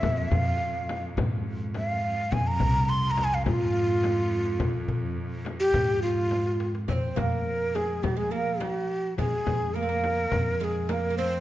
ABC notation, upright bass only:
X:1
M:4/4
L:1/16
Q:1/4=105
K:none
V:1 name="Upright bass" clef=bass
F,,2 F,,2 z4 _A,,8 | F,,2 C,,6 _A,,8 | F,,2 F,,2 z4 _A,,8 | F,,2 F,,6 F,8 |
F,, z F,,6 F,,8 |]